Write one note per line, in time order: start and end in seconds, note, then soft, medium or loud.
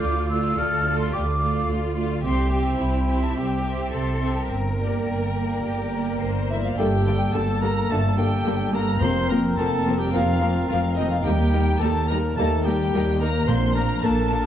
0.00 0.50 D2 medium
0.00 0.28 A3 soft
0.00 0.29 F4 soft
0.00 0.57 F4 medium
0.00 0.29 D5 soft
0.00 0.29 D6 medium
0.29 0.84 A3 soft
0.29 0.85 F4 soft
0.29 0.83 D5 soft
0.29 0.59 E6 medium
0.57 1.06 D2 medium
0.57 1.13 A4 medium
0.57 0.98 F6 medium
0.84 1.40 A3 soft
0.84 1.40 F4 soft
0.84 1.38 D5 soft
0.99 1.15 C6 medium
1.12 1.62 D2 medium
1.12 1.20 G4 medium
1.12 1.69 D6 medium
1.39 1.96 A3 soft
1.39 2.22 F4 soft
1.39 1.96 F4 soft
1.39 1.95 D5 soft
1.68 2.18 D2 soft
1.96 2.24 A3 soft
1.96 2.24 F4 soft
1.96 2.23 D5 soft
2.22 2.73 C2 medium
2.22 2.51 C4 soft
2.22 2.79 G4 medium
2.22 2.52 G4 soft
2.22 2.49 E5 soft
2.22 2.50 C6 medium
2.50 3.08 C4 soft
2.50 3.08 G4 soft
2.50 3.05 E5 soft
2.50 2.79 G5 medium
2.79 3.29 C2 soft
2.79 3.35 E4 soft
2.79 3.25 G5 medium
3.07 3.64 C4 soft
3.07 3.64 G4 soft
3.07 3.63 E5 soft
3.23 3.36 A5 soft
3.35 3.86 C2 soft
3.35 3.93 G4 soft
3.35 3.92 G5 soft
3.64 4.20 C4 soft
3.64 4.21 G4 soft
3.64 4.20 E5 soft
3.92 4.43 C2 soft
3.92 4.49 A4 soft
3.92 4.34 C6 soft
4.21 4.50 C4 soft
4.21 4.50 G4 soft
4.21 4.49 E5 soft
4.35 4.41 A5 soft
4.48 5.00 G1 soft
4.48 6.46 A#4 soft
4.48 6.26 G5 soft
4.78 5.34 A#3 soft
4.78 5.02 G4 soft
4.78 5.34 D5 soft
5.07 5.57 G1 soft
5.07 5.60 A#4 soft
5.35 5.92 A#3 soft
5.35 5.92 D5 soft
5.63 6.14 G1 soft
5.63 6.21 G4 soft
5.93 6.49 A#3 soft
5.93 6.49 D5 soft
6.20 6.71 G1 soft
6.20 6.78 C5 soft
6.49 6.63 E3 soft
6.49 6.78 A#3 soft
6.49 6.65 E4 soft
6.49 6.78 D5 soft
6.49 6.56 E5 soft
6.49 6.63 E5 soft
6.63 6.70 F3 soft
6.63 6.77 F4 soft
6.63 6.75 F5 soft
6.63 6.79 F5 soft
6.76 7.27 G1 medium
6.76 7.28 G2 medium
6.76 6.97 A#2 soft
6.76 6.86 D3 soft
6.76 7.33 G3 soft
6.76 6.87 G3 soft
6.76 6.98 A3 soft
6.76 8.98 A#3 soft
6.76 6.87 A#3 soft
6.76 7.34 G4 medium
6.76 8.97 A4 soft
6.76 6.86 A4 soft
6.76 7.35 G5 medium
6.76 7.34 G5 medium
7.06 7.15 D3 soft
7.06 7.15 G3 soft
7.06 7.14 A#3 soft
7.06 7.14 A4 soft
7.33 7.83 G1 soft
7.33 7.84 G2 soft
7.33 7.42 D3 soft
7.33 7.43 G3 soft
7.33 7.47 A3 soft
7.33 7.42 A#3 soft
7.33 7.60 A4 medium
7.33 7.42 A4 soft
7.33 7.62 A5 medium
7.33 7.63 A5 medium
7.61 7.70 D3 soft
7.61 7.70 G3 soft
7.61 7.75 A#3 soft
7.61 7.70 A#3 soft
7.61 7.70 A4 soft
7.61 7.89 A#4 medium
7.61 7.92 A#5 medium
7.61 7.90 A#5 medium
7.89 8.40 G1 soft
7.89 8.40 G2 medium
7.89 8.09 A#2 soft
7.89 7.98 D3 soft
7.89 7.98 G3 soft
7.89 8.09 A3 soft
7.89 8.18 A3 medium
7.89 7.98 A#3 soft
7.89 8.02 A4 soft
7.89 7.98 A4 soft
7.89 8.18 A5 medium
7.89 8.17 A5 medium
8.17 8.25 D3 soft
8.17 8.26 G3 soft
8.17 8.73 G3 medium
8.17 8.26 A#3 soft
8.17 8.76 G4 medium
8.17 8.26 A4 soft
8.17 8.76 G5 soft
8.17 8.73 G5 medium
8.45 8.95 G1 soft
8.45 8.95 G2 soft
8.45 8.53 D3 soft
8.45 8.53 G3 soft
8.45 8.55 A#3 soft
8.45 8.54 A4 soft
8.72 8.80 D3 soft
8.72 8.81 G3 soft
8.72 9.02 A#3 soft
8.72 8.83 A#3 soft
8.72 8.82 A4 soft
8.72 9.03 A#4 medium
8.72 9.02 A#5 medium
9.00 9.52 F1 soft
9.00 9.82 F2 soft
9.00 9.51 F2 medium
9.00 9.21 C3 soft
9.00 9.09 F3 soft
9.00 9.21 A#3 soft
9.00 9.10 A#3 soft
9.00 9.30 C4 medium
9.00 11.27 C4 soft
9.00 9.12 C4 soft
9.00 13.15 A#4 soft
9.00 9.31 C5 medium
9.00 9.30 C6 medium
9.04 9.12 A#4 soft
9.04 9.31 C6 medium
9.29 9.39 F3 soft
9.29 9.55 A#3 medium
9.29 9.39 A#3 soft
9.29 9.39 C4 soft
9.29 9.57 A#4 medium
9.29 9.38 A#4 soft
9.29 9.59 A#5 medium
9.29 9.38 A#5 medium
9.56 10.08 F1 medium
9.56 10.07 F2 soft
9.56 9.67 F3 soft
9.56 9.99 A#3 medium
9.56 9.67 A#3 soft
9.56 9.67 C4 soft
9.56 10.00 A4 medium
9.56 9.67 A#4 soft
9.56 9.99 A5 medium
9.86 9.95 F3 soft
9.86 9.95 A#3 soft
9.86 9.95 C4 soft
9.86 9.94 A#4 soft
9.98 10.13 G3 medium
9.98 10.12 G4 medium
9.98 10.12 G5 soft
9.98 10.14 G5 medium
10.12 10.64 F1 soft
10.12 10.63 F2 medium
10.12 10.34 C3 soft
10.12 10.68 F3 medium
10.12 10.23 F3 soft
10.12 10.34 A#3 soft
10.12 10.23 A#3 soft
10.12 10.21 C4 soft
10.12 10.68 F4 medium
10.12 10.22 A#4 soft
10.12 10.68 F5 medium
10.12 10.67 F5 medium
10.42 10.50 F3 soft
10.42 10.50 A#3 soft
10.42 10.50 C4 soft
10.42 10.50 A#4 soft
10.68 11.19 F1 medium
10.68 11.18 F2 soft
10.68 10.97 F3 medium
10.68 10.80 F3 soft
10.68 10.79 C4 soft
10.68 10.81 F4 medium
10.68 10.79 A#4 soft
10.68 10.96 F5 medium
10.68 10.75 F5 medium
10.72 10.80 A#3 soft
10.96 11.12 D#3 soft
10.96 11.08 F3 soft
10.96 11.07 A#3 soft
10.96 11.05 C4 soft
10.96 11.10 D#4 medium
10.96 11.05 A#4 soft
10.96 11.11 D#5 medium
10.96 11.10 D#5 soft
11.10 11.18 F3 soft
11.10 11.17 F4 soft
11.10 11.17 F5 soft
11.10 11.25 F5 medium
11.23 11.74 D#2 medium
11.23 11.75 D#2 medium
11.23 11.44 D#3 soft
11.23 11.81 G3 medium
11.23 11.44 A#3 soft
11.23 13.20 D#4 soft
11.23 11.34 D#4 soft
11.23 11.79 G4 medium
11.23 11.34 A#4 soft
11.23 11.81 G5 medium
11.27 11.35 G3 medium
11.27 11.35 A#3 medium
11.53 11.63 G3 soft
11.53 11.63 A#3 soft
11.53 11.61 D#4 soft
11.53 11.61 A#4 soft
11.79 12.30 D#2 medium
11.79 12.31 D#2 medium
11.79 11.91 G3 soft
11.79 11.94 A3 medium
11.79 11.91 A#3 soft
11.79 11.89 D#4 soft
11.79 12.10 A4 medium
11.79 11.89 A#4 soft
11.79 12.06 A5 medium
11.79 12.09 A5 medium
12.07 12.19 A#3 soft
12.07 12.19 D#4 soft
12.07 12.36 A#4 medium
12.07 12.19 A#4 soft
12.07 12.35 A#5 medium
12.07 12.17 A#5 medium
12.11 12.19 G3 soft
12.11 12.38 A#3 medium
12.36 12.86 D#2 medium
12.36 12.87 D#2 medium
12.36 12.56 D#3 soft
12.36 12.45 G3 soft
12.36 12.65 A3 medium
12.36 12.56 A#3 medium
12.36 12.46 A#3 soft
12.36 12.48 D#4 soft
12.36 12.67 A4 medium
12.36 12.48 A#4 soft
12.36 12.64 A5 medium
12.36 12.43 A5 medium
12.64 12.74 G3 soft
12.64 13.20 G3 medium
12.64 12.74 A#3 soft
12.64 12.76 D#4 soft
12.64 13.20 G4 medium
12.64 12.76 A#4 soft
12.64 13.19 G5 medium
12.64 13.21 G5 medium
12.93 13.42 D#2 medium
12.93 13.43 D#2 medium
12.93 13.01 G3 soft
12.93 13.01 A#3 soft
12.93 13.03 D#4 medium
12.93 13.03 A#4 soft
13.20 13.29 G3 soft
13.20 13.48 A#3 medium
13.20 13.29 A#3 soft
13.20 13.29 D#4 soft
13.20 13.49 A#4 medium
13.20 13.30 A#4 soft
13.20 13.47 A#5 medium
13.20 13.48 A#5 medium
13.47 13.97 A#1 medium
13.47 14.27 A#2 medium
13.47 13.98 A#2 medium
13.47 13.68 D3 soft
13.47 13.57 A#3 medium
13.47 13.68 A#3 soft
13.47 13.76 C4 medium
13.47 13.55 D4 medium
13.47 14.46 D4 medium
13.47 13.55 A#4 medium
13.47 14.46 A#4 medium
13.47 13.74 C5 medium
13.47 13.75 C6 medium
13.47 13.76 C6 medium
13.75 13.84 A#3 soft
13.75 14.03 A#3 medium
13.75 13.83 D4 soft
13.75 14.02 A#4 medium
13.75 13.83 A#4 soft
13.75 14.02 A#5 medium
13.75 14.05 A#5 medium
14.02 14.46 A#1 medium
14.02 14.46 A#2 medium
14.02 14.12 A#3 medium
14.02 14.45 A#3 medium
14.02 14.11 D4 medium
14.02 14.46 A4 medium
14.02 14.10 A#4 soft
14.02 14.45 A5 medium
14.02 14.46 A5 medium
14.29 14.40 A#3 medium
14.29 14.37 D4 soft
14.29 14.38 A#4 soft